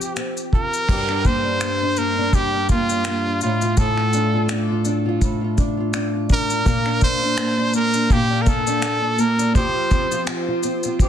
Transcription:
Already playing: nylon-string guitar F3 C4 F4 G4, trumpet G4
0.01 shaker
0.16 nylon-string guitar C4, finger snap, shaker
0.37 shaker
0.53 nylon-string guitar F4, trumpet A#4, kick
0.73 shaker
0.89 nylon-string guitar G2 G4, kick, crash
1.09 nylon-string guitar D4, finger snap
1.25 nylon-string guitar A#3, trumpet C5, kick, shaker
1.44 nylon-string guitar D4
1.61 nylon-string guitar A#3, finger snap, shaker
1.82 nylon-string guitar D4
1.96 nylon-string guitar A#3, trumpet A#4, shaker
2.18 nylon-string guitar D4
2.33 nylon-string guitar G2 G4, trumpet G4, kick, shaker
2.54 nylon-string guitar D4
2.69 nylon-string guitar A#3, trumpet F4, kick, shaker
2.89 nylon-string guitar D4, shaker
3.05 nylon-string guitar A#3, finger snap, shaker
3.26 nylon-string guitar D4
3.41 nylon-string guitar A2, trumpet F4, shaker
3.61 nylon-string guitar F4, shaker
3.77 nylon-string guitar A2 A4, trumpet A4, kick, shaker
3.97 nylon-string guitar F4, finger snap
4.13 nylon-string guitar D4, shaker
4.34 nylon-string guitar F4
4.49 nylon-string guitar D4, finger snap, shaker
4.69 nylon-string guitar F4
4.85 nylon-string guitar D4, shaker
5.06 nylon-string guitar F4
5.21 nylon-string guitar A2, kick, shaker
5.41 nylon-string guitar F4
5.58 nylon-string guitar D4, kick, shaker
5.77 nylon-string guitar F4
5.94 nylon-string guitar D4, finger snap, shaker
6.13 nylon-string guitar F4
6.29 nylon-string guitar D4, trumpet A#4, kick, shaker
6.50 nylon-string guitar F4, shaker
6.65 nylon-string guitar A#2 A#4, kick, shaker
6.86 nylon-string guitar D4, finger snap
7.01 nylon-string guitar A#3, trumpet C5, kick, shaker
7.22 nylon-string guitar D4
7.37 nylon-string guitar A#3, finger snap, shaker
7.58 nylon-string guitar D4
7.74 nylon-string guitar A#3, trumpet A#4, shaker
7.94 nylon-string guitar D4, shaker
8.10 nylon-string guitar A#2, trumpet G4, kick, shaker
8.30 nylon-string guitar D4
8.42 trumpet A#4
8.46 nylon-string guitar A#3, trumpet A4, kick, shaker
8.67 nylon-string guitar D4, shaker
8.82 nylon-string guitar A#3, finger snap, shaker
9.02 nylon-string guitar D4
9.18 nylon-string guitar A#3, trumpet A#4, shaker
9.38 nylon-string guitar D4, shaker
9.54 nylon-string guitar F3 G4, trumpet C5, kick, shaker
9.75 nylon-string guitar F4
9.90 nylon-string guitar C4, kick, shaker
10.11 nylon-string guitar F4, shaker
10.27 nylon-string guitar C4, finger snap, shaker
10.48 nylon-string guitar F4
10.63 nylon-string guitar C4, shaker
10.83 nylon-string guitar F4, shaker
10.99 nylon-string guitar F3 G4, kick, shaker

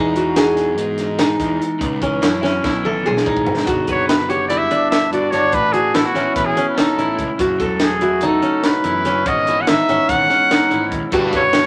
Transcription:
Already playing: picked electric bass E2, clean electric guitar E2 E3 G#3 D#4 G#4, qanun C#4 D#4 G#4
0.14 clean electric guitar E3, qanun F#4, closed hi-hat
0.36 clean electric guitar D#4, qanun G#4, snare, closed hi-hat
0.56 clean electric guitar G#4, snare, closed hi-hat
0.77 picked electric bass G#2, clean electric guitar B2, closed hi-hat
0.98 clean electric guitar D#4, snare, closed hi-hat
1.19 qanun D#4, clean electric guitar G#4, snare, closed hi-hat
1.40 picked electric bass E2, clean electric guitar G#3, kick, snare, closed hi-hat
1.60 clean electric guitar E2, closed hi-hat
1.79 picked electric bass C#2, clean electric guitar C#3, kick, closed hi-hat
2.01 picked electric bass C#2, clean electric guitar E3, qanun C#4, kick, closed hi-hat
2.21 picked electric bass F#2, clean electric guitar C#4, qanun E4, snare, closed hi-hat
2.41 qanun C#4, clean electric guitar E4, snare
2.53 clean electric guitar F#4
2.63 picked electric bass B1, clean electric guitar B2, qanun E4, kick, snare
2.83 clean electric guitar E3, qanun A4, mid tom
3.03 clean electric guitar B2, qanun G#4, mid tom
3.17 snare
3.23 picked electric bass G#1, clean electric guitar A2, qanun D#4, kick
3.37 kick
3.44 clean electric guitar G#2, floor tom
3.57 snare
3.64 picked electric bass G1, clean electric guitar D3 B3 D4 F#4, qanun F#4, kick, closed hi-hat
3.84 picked electric bass F#1, clean electric guitar D3, kick, closed hi-hat
3.89 qanun B4, trumpet C#5
4.06 clean electric guitar B3, trumpet B4, snare, closed hi-hat
4.29 clean electric guitar F#4, qanun G4, trumpet C#5, closed hi-hat
4.48 clean electric guitar G2, qanun E4, trumpet D5, closed hi-hat
4.58 trumpet E5
4.71 clean electric guitar B3, qanun D4, closed hi-hat
4.90 clean electric guitar D4, trumpet E5, snare, closed hi-hat
5.11 picked electric bass G2, qanun F#4, clean electric guitar F#4, trumpet D5, closed hi-hat
5.31 picked electric bass G1, clean electric guitar G2, qanun D4, trumpet C#5, snare, closed hi-hat
5.52 picked electric bass A1, clean electric guitar A2, trumpet B4, kick, closed hi-hat
5.73 clean electric guitar E3, qanun F#4, trumpet G#4, closed hi-hat
5.94 picked electric bass A1, clean electric guitar B3, qanun E4, trumpet A4, snare, closed hi-hat
6.06 trumpet F#4
6.15 picked electric bass A1, qanun C#4, clean electric guitar E4, snare, closed hi-hat
6.34 picked electric bass A1, clean electric guitar E2, trumpet B4, kick, closed hi-hat
6.45 trumpet G#4
6.55 clean electric guitar B3, qanun C#4, closed hi-hat
6.69 trumpet B4
6.75 clean electric guitar B3, qanun D#4, trumpet A4, snare, closed hi-hat
6.86 clean electric guitar C#4
6.97 picked electric bass A1, clean electric guitar E4, qanun E4, closed hi-hat
7.16 picked electric bass C#2, clean electric guitar A2, kick, closed hi-hat
7.38 picked electric bass F#1, clean electric guitar F#2, qanun F#4, kick, closed hi-hat
7.58 picked electric bass E1, clean electric guitar F#3, qanun A4, kick, closed hi-hat
7.80 clean electric guitar A3, snare, closed hi-hat
7.84 trumpet G#4
8.01 clean electric guitar E4, qanun F#4, closed hi-hat
8.21 clean electric guitar C#3, qanun D#4, closed hi-hat
8.26 trumpet A4
8.42 clean electric guitar A3, qanun C#4, closed hi-hat
8.63 trumpet B4, snare, closed hi-hat
8.84 clean electric guitar E2, picked electric bass F#2, qanun E4, closed hi-hat
9.04 picked electric bass F#1, clean electric guitar F#2, qanun C#4, snare, closed hi-hat
9.26 picked electric bass G#1, clean electric guitar G#2 E3 G#3 B3 F#4, trumpet D#5, kick, closed hi-hat
9.47 clean electric guitar E3, qanun E4, closed hi-hat
9.61 trumpet F#5
9.67 picked electric bass G#1, clean electric guitar G#3, qanun D#4, trumpet E5, snare, closed hi-hat
9.89 picked electric bass G#1, qanun C#4, clean electric guitar F#4, closed hi-hat
10.09 picked electric bass G#1, clean electric guitar G#2, trumpet F#5, kick, closed hi-hat
10.30 clean electric guitar G#3, qanun C#4, snare, closed hi-hat
10.49 clean electric guitar B2, qanun D#4, snare, closed hi-hat
10.68 clean electric guitar A2, qanun E4, closed hi-hat
10.72 picked electric bass G#1
10.90 picked electric bass D#2, clean electric guitar G#2, kick, closed hi-hat
11.11 picked electric bass G1, clean electric guitar G2, overdriven electric guitar G3 D4 G4 B4, qanun F#4, kick, closed hi-hat
11.31 picked electric bass F#1, clean electric guitar D3, qanun B4, kick, closed hi-hat
11.37 trumpet C#5
11.52 clean electric guitar B3, snare, closed hi-hat

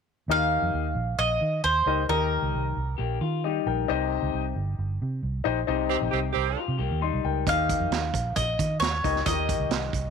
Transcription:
0.28 fingered electric bass D#2, grand piano D#3 D#4 G4 A#4 D#5, mandolin F5
0.62 fingered electric bass F2
0.74 fingered electric bass D#2
0.95 fingered electric bass A#1
1.18 fingered electric bass A#1, mandolin D#5
1.41 fingered electric bass D#3
1.64 fingered electric bass D#2, mandolin C5
1.86 fingered electric bass C#2, grand piano D#4 G4 A#4 D#5
2.09 fingered electric bass D#2, grand piano D#3 D#4 G4 A#4 D#5, mandolin A#4
2.42 fingered electric bass C#2
2.54 fingered electric bass C2
2.77 fingered electric bass C2
2.98 fingered electric bass A#1, clean electric guitar A#3 G4
3.21 fingered electric bass D#3, clean electric guitar F4
3.44 clean electric guitar G3 D#4, grand piano G4 D#5
3.66 fingered electric bass A#1, grand piano A#4 G5
3.88 fingered electric bass C2, grand piano C3 D#4 G4 C5 D#5
4.22 fingered electric bass C#2
4.34 fingered electric bass C2
4.56 fingered electric bass G1
4.78 fingered electric bass G1
5.02 fingered electric bass C3
5.23 fingered electric bass C2
5.44 fingered electric bass A#1, grand piano D#4 G4 C5 D#5
5.67 fingered electric bass C2, grand piano C3 D#4 G4 C5 D#5
5.89 horn section D#3 C4 G4
6.02 fingered electric bass A#1
6.11 fingered electric bass C2, horn section D#3 C4 G4
6.33 fingered electric bass C2, horn section D#3 C4 G4
6.57 clean electric guitar F4
6.68 fingered electric bass C3
6.79 fingered electric bass C2, clean electric guitar A#3 G4
6.91 fingered electric bass D#2
7.01 clean electric guitar G3 D#4, grand piano D#5 C6
7.14 fingered electric bass C2
7.24 fingered electric bass C#2, grand piano A#4 G5
7.47 fingered electric bass D#2, grand piano D#3 D#4 G4 A#4 D#5, mandolin F5, kick, closed hi-hat
7.69 kick, closed hi-hat
7.80 fingered electric bass F2
7.91 fingered electric bass D#2, snare, closed hi-hat
8.13 fingered electric bass A#1, kick, closed hi-hat
8.36 fingered electric bass A#1, mandolin D#5, kick, closed hi-hat
8.59 fingered electric bass D#3, kick, closed hi-hat
8.80 fingered electric bass D#2, mandolin C#5, snare, closed hi-hat
9.04 fingered electric bass C#2, grand piano D#4 G4 A#4 D#5, kick, closed hi-hat
9.16 snare
9.26 fingered electric bass D#2, grand piano D#3 D#4 F4 A#4 D#5, mandolin D#5, kick, closed hi-hat
9.32 grand piano G4
9.49 kick, closed hi-hat
9.60 fingered electric bass C#2
9.69 fingered electric bass C2, snare, closed hi-hat
9.93 fingered electric bass C2, kick, closed hi-hat

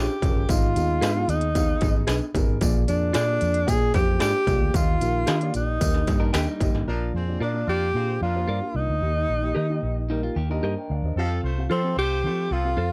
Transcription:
Already playing: vibraphone G4, tenor saxophone G4, upright piano C5
0.22 fingered electric bass F1, upright piano C#4 F4 G#4 A#4, kick, closed hi-hat, tambourine
0.36 fingered electric bass G1
0.49 fingered electric bass G#1, upright piano G#2 B3 D#4 G#4 D#5, vibraphone F4, tenor saxophone F4, kick, closed hi-hat, tambourine
0.75 fingered electric bass D#2, upright piano B3 D#4 G#4 D#5, closed hi-hat, tambourine
1.01 fingered electric bass G#2, clean electric guitar G#4 B4 D#5, snare, closed hi-hat, tambourine
1.14 upright piano B3 D#4 G#4 F5
1.28 fingered electric bass D#2, tenor saxophone D#4, vibraphone D#4, closed hi-hat, tambourine
1.41 closed hi-hat
1.54 upright piano B3 D#4 G#4 F5, kick, closed hi-hat, tambourine
1.81 fingered electric bass G#1, upright piano B3 D#4 G#4 D#5, kick, snare, closed hi-hat, tambourine
2.07 fingered electric bass B1, clean electric guitar G#4 B4 D#5, snare, closed hi-hat, tambourine
2.34 fingered electric bass G1, upright piano B3 D#4 G#4 A#4, kick, closed hi-hat, tambourine
2.48 fingered electric bass G#1
2.61 fingered electric bass A#1, upright piano A#2 A#3 F4 G#4 D5, kick, closed hi-hat, tambourine
2.87 fingered electric bass F2, upright piano A#3 F4 G#4 D5, vibraphone D4, tenor saxophone D4, closed hi-hat, tambourine
3.13 fingered electric bass A#2, tenor saxophone D4, vibraphone D4, clean electric guitar F4 G#4 D5, snare, closed hi-hat, tambourine
3.27 upright piano A#3 F4 G#4 D5
3.41 fingered electric bass F2, closed hi-hat, tambourine
3.54 closed hi-hat
3.67 fingered electric bass A#2, upright piano A#3 F4 G#4 D5, vibraphone G#4, tenor saxophone G#4, kick, closed hi-hat, tambourine
3.94 fingered electric bass F2, upright piano A#3 F4 G#4 C5, vibraphone G4, tenor saxophone G4, kick, snare, closed hi-hat, tambourine
4.20 fingered electric bass G#2, clean electric guitar F4 G#4 D5, vibraphone G4, tenor saxophone G4, snare, closed hi-hat, tambourine
4.47 fingered electric bass C2, upright piano A#3 F4 G#4 D5, kick, closed hi-hat, tambourine
4.61 fingered electric bass D2
4.74 fingered electric bass D#2, upright piano D#3 A#3 D#4 G4 D#5, vibraphone F4, tenor saxophone F4, kick, closed hi-hat, tambourine
5.01 fingered electric bass A#1, upright piano A#3 D#4 G4 A#4, closed hi-hat, tambourine
5.27 fingered electric bass D#3, clean electric guitar G4 A#4 D#5, snare, closed hi-hat, tambourine
5.40 upright piano A#3 D#4 G4 D5, closed hi-hat
5.54 fingered electric bass A#1, vibraphone D#4, tenor saxophone D#4, closed hi-hat, tambourine
5.79 fingered electric bass D#2, upright piano A#3 D#4 G4 A#4, kick, closed hi-hat, tambourine
5.94 snare
6.06 fingered electric bass G2, upright piano A#3 D#4 G4 D#5, kick, snare, closed hi-hat, tambourine
6.20 clean electric guitar D4 A#4
6.33 fingered electric bass D#2, clean electric guitar A#3 G4 A#4 D#5, snare, closed hi-hat, tambourine
6.47 clean electric guitar G3 D#4
6.60 fingered electric bass G1, upright piano A#3 D#4 G4 D#5, kick, closed hi-hat, tambourine
6.74 fingered electric bass G#1, snare
6.87 fingered electric bass A#1, upright piano A#2 A#3 D4 F4 D5, horn section F3 D4 A#4
7.14 fingered electric bass F2, horn section C4 G#4 C5
7.28 upright piano A#3 D4 F4 D5
7.40 fingered electric bass A#2, horn section F3 D4 A#4, tenor saxophone D4, clean electric guitar F4 A#4 D5
7.53 upright piano A#3 D4 F4 D5
7.67 fingered electric bass F2, horn section A#3 F4 D5, tenor saxophone G4
7.94 fingered electric bass A#2, upright piano A#3 D4 F4 F5, horn section C4 G#4 C5
8.21 fingered electric bass F2, horn section F3 D4 A#4, tenor saxophone F4
8.34 upright piano A#3 D4 F4 C5
8.48 fingered electric bass G2, clean electric guitar F4 A#4 D5
8.61 upright piano A#3 D4 F4 A#4
8.75 fingered electric bass C2, tenor saxophone D#4
8.89 fingered electric bass D2
9.01 fingered electric bass D#2, upright piano D#3 A#3 D#4 G4 D#5
9.29 fingered electric bass A#1
9.42 upright piano A#3 D#4 G4 D#5
9.55 fingered electric bass D#3, clean electric guitar G4 A#4 D#5
9.69 upright piano A#3 D#4 G4 D#5
9.83 fingered electric bass A#1
10.09 clean electric guitar G3 D#4, upright piano A#3 D#4 G4 A#4
10.23 clean electric guitar F4
10.36 fingered electric bass D#2, clean electric guitar A#3 G4
10.49 upright piano A#3 D#4 G4 D#5, clean electric guitar D4 A#4
10.63 fingered electric bass G2, clean electric guitar G4 A#4 D#5, upright piano C5 D#5
10.78 upright piano D#5 G5
10.90 fingered electric bass D2, upright piano D5 F5
11.03 fingered electric bass D#2, upright piano C5 D#5
11.16 fingered electric bass F2, horn section F3 C4 A4, upright piano C4 F4 A4 F5
11.43 fingered electric bass C2, horn section A3 F4 C5
11.58 upright piano C4 F4 A4 F5
11.70 fingered electric bass F3, horn section F3 C4 A4, tenor saxophone C4, clean electric guitar F4 A4 C5
11.84 upright piano C4 F4 A4 F5
11.97 fingered electric bass C2, horn section A3 F4 C5, tenor saxophone G4
12.24 fingered electric bass F3, horn section A3 F4 C5, upright piano C4 F4 A4 F5
12.50 fingered electric bass C2, horn section F3 C4 A4, tenor saxophone F4
12.64 upright piano C4 F4 A4 F5
12.77 fingered electric bass F2, clean electric guitar F4 A4 C5

